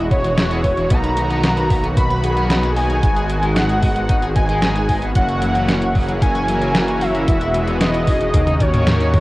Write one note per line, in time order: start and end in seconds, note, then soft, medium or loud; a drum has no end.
0.00 0.88 E1 medium
0.00 0.87 E3 medium
0.00 0.89 G#3 medium
0.00 5.11 F#4 medium
0.11 0.15 B3 medium
0.11 0.92 C#5 loud
0.11 kick loud
0.11 closed hi-hat medium
0.24 0.28 E3 medium
0.24 closed hi-hat soft
0.38 0.42 G#3 loud
0.38 snare loud
0.38 closed hi-hat medium
0.51 0.61 G#3 medium
0.51 0.58 B3 loud
0.51 0.61 B3 medium
0.51 0.61 E4 medium
0.51 0.61 G#4 loud
0.51 closed hi-hat soft
0.64 0.71 E3 medium
0.64 0.72 G#3 loud
0.64 0.72 B3 medium
0.64 0.72 E4 medium
0.64 0.72 B4 loud
0.64 kick medium
0.64 open hi-hat medium
0.77 0.84 E3 medium
0.77 closed hi-hat soft
0.90 3.00 B1 medium
0.90 5.12 D#3 medium
0.90 1.67 F#3 medium
0.90 1.67 A#3 medium
0.90 0.97 B3 medium
0.90 1.67 B3 medium
0.90 1.67 D#4 loud
0.90 1.86 A#5 loud
0.90 kick loud
0.90 closed hi-hat medium
1.04 1.11 B4 medium
1.04 closed hi-hat soft
1.17 1.21 B3 medium
1.17 closed hi-hat medium
1.30 1.41 B3 loud
1.30 closed hi-hat soft
1.44 1.50 B3 medium
1.44 snare loud
1.44 closed hi-hat medium
1.57 1.64 B4 medium
1.57 closed hi-hat soft
1.70 2.20 F#3 medium
1.70 2.20 A#3 medium
1.70 1.74 B3 loud
1.70 2.20 B3 medium
1.70 2.20 F#4 medium
1.70 kick loud
1.70 open hi-hat medium
1.84 1.88 B3 medium
1.84 closed hi-hat soft
1.97 2.04 F#4 medium
1.97 2.66 B5 loud
1.97 kick loud
1.97 closed hi-hat medium
2.10 2.17 B4 medium
2.10 closed hi-hat soft
2.23 3.00 F#3 medium
2.23 3.00 A#3 medium
2.23 3.00 B3 medium
2.23 2.28 B3 medium
2.23 3.00 G#4 loud
2.23 closed hi-hat medium
2.37 2.47 B3 loud
2.37 closed hi-hat soft
2.50 2.60 B3 medium
2.50 snare loud
2.50 closed hi-hat medium
2.63 2.70 B4 medium
2.63 closed hi-hat soft
2.76 2.87 B3 medium
2.76 3.46 G#5 loud
2.76 open hi-hat medium
2.90 2.97 D#4 medium
2.90 closed hi-hat soft
3.03 5.13 G#1 medium
3.03 3.10 G#3 medium
3.03 3.80 G#3 medium
3.03 5.14 G#3 medium
3.03 3.80 B3 medium
3.03 3.80 D#4 medium
3.03 3.80 F#4 loud
3.03 kick loud
3.03 closed hi-hat medium
3.16 3.23 G#4 medium
3.16 closed hi-hat soft
3.30 3.34 G#3 medium
3.30 closed hi-hat medium
3.43 3.53 G#3 loud
3.43 closed hi-hat soft
3.56 3.63 G#3 medium
3.56 4.25 F#5 loud
3.56 snare loud
3.56 closed hi-hat medium
3.69 3.76 G#4 medium
3.69 closed hi-hat soft
3.83 3.87 G#3 loud
3.83 4.33 G#3 medium
3.83 4.33 B3 medium
3.83 4.33 D#4 medium
3.83 4.33 F#4 loud
3.83 kick loud
3.83 open hi-hat medium
3.96 4.00 G#3 medium
3.96 closed hi-hat soft
4.09 4.16 D#4 medium
4.09 kick loud
4.09 closed hi-hat medium
4.22 4.29 G#4 medium
4.22 closed hi-hat soft
4.36 4.40 G#3 medium
4.36 4.46 G#3 medium
4.36 4.46 B3 medium
4.36 4.46 D#4 medium
4.36 4.46 F#4 medium
4.36 5.05 G#5 loud
4.36 kick loud
4.36 closed hi-hat medium
4.49 4.59 G#3 loud
4.49 5.13 G#3 medium
4.49 5.13 B3 medium
4.49 5.13 D#4 medium
4.49 5.13 G#4 medium
4.49 closed hi-hat soft
4.62 4.73 G#3 medium
4.62 snare loud
4.62 closed hi-hat medium
4.76 4.82 G#4 medium
4.76 closed hi-hat soft
4.89 4.99 G#3 medium
4.89 kick medium
4.89 open hi-hat medium
5.02 5.09 B3 medium
5.02 closed hi-hat soft
5.15 7.25 F#1 medium
5.15 8.31 E3 medium
5.15 5.22 F#3 medium
5.15 7.26 A#3 medium
5.15 5.92 A#3 medium
5.15 7.26 C#4 medium
5.15 5.92 C#4 medium
5.15 5.92 E4 medium
5.15 8.31 F#4 medium
5.15 5.92 F#4 loud
5.15 6.11 F#5 loud
5.15 kick loud
5.15 closed hi-hat medium
5.29 5.36 F#4 medium
5.29 closed hi-hat soft
5.42 5.46 F#3 medium
5.42 closed hi-hat medium
5.55 5.65 F#3 loud
5.55 closed hi-hat soft
5.69 5.75 F#3 medium
5.69 snare loud
5.69 closed hi-hat medium
5.82 5.89 F#4 medium
5.82 closed hi-hat soft
5.95 5.99 F#3 loud
5.95 6.45 A#3 medium
5.95 6.45 C#4 medium
5.95 6.45 E4 medium
5.95 6.45 G#4 medium
5.95 kick loud
5.95 open hi-hat medium
6.08 6.12 F#3 medium
6.08 closed hi-hat soft
6.22 6.28 C#4 medium
6.22 7.03 G#5 loud
6.22 kick loud
6.22 closed hi-hat medium
6.35 6.42 F#4 medium
6.35 closed hi-hat soft
6.48 6.52 F#3 medium
6.48 7.25 A#3 medium
6.48 7.25 C#4 medium
6.48 7.25 E4 medium
6.48 7.25 A#4 loud
6.48 closed hi-hat medium
6.62 6.72 F#3 loud
6.62 closed hi-hat soft
6.75 6.85 F#3 medium
6.75 snare loud
6.75 closed hi-hat medium
6.88 6.95 F#4 medium
6.88 closed hi-hat soft
7.01 7.11 F#3 medium
7.01 7.71 E5 loud
7.01 open hi-hat medium
7.14 7.21 A#3 medium
7.14 closed hi-hat soft
7.28 8.32 E1 medium
7.28 7.35 E3 medium
7.28 8.05 G#3 medium
7.28 8.33 G#3 medium
7.28 8.05 B3 medium
7.28 8.33 B3 medium
7.28 8.05 E4 medium
7.28 8.05 F#4 loud
7.28 kick loud
7.28 closed hi-hat loud
7.41 7.48 E4 medium
7.41 closed hi-hat soft
7.54 7.59 E3 medium
7.54 closed hi-hat medium
7.67 7.78 E3 loud
7.67 closed hi-hat soft
7.81 7.88 E3 medium
7.81 8.62 D#5 loud
7.81 snare loud
7.81 closed hi-hat medium
7.94 8.01 E4 medium
7.94 closed hi-hat soft
8.07 8.12 E3 loud
8.07 8.58 C#4 medium
8.07 8.58 D#4 medium
8.07 8.58 F#4 medium
8.07 8.58 G#4 loud
8.07 kick loud
8.07 open hi-hat medium
8.21 8.25 E3 medium
8.21 closed hi-hat soft
8.34 9.20 D#2 medium
8.34 9.20 D#3 medium
8.34 9.20 A#3 medium
8.34 8.41 A#3 medium
8.34 9.20 C#4 medium
8.34 9.20 F#4 medium
8.34 kick loud
8.34 closed hi-hat loud
8.34 high tom medium
8.47 8.54 D#4 medium
8.47 closed hi-hat soft
8.47 high tom medium
8.60 8.65 D#3 medium
8.60 8.71 C#4 medium
8.60 8.71 D#4 medium
8.60 8.71 F#4 medium
8.60 8.71 A#4 medium
8.60 9.20 C#5 medium
8.60 kick loud
8.60 closed hi-hat medium
8.74 8.84 D#3 loud
8.74 9.20 C#4 medium
8.74 9.20 D#4 medium
8.74 9.20 F#4 medium
8.74 9.20 C#5 loud
8.74 closed hi-hat soft
8.74 mid tom medium
8.87 snare loud
8.87 closed hi-hat medium
8.87 mid tom medium
9.00 9.07 D#4 medium
9.00 closed hi-hat soft
9.14 9.20 D#3 medium
9.14 kick medium
9.14 mid tom loud
9.14 open hi-hat medium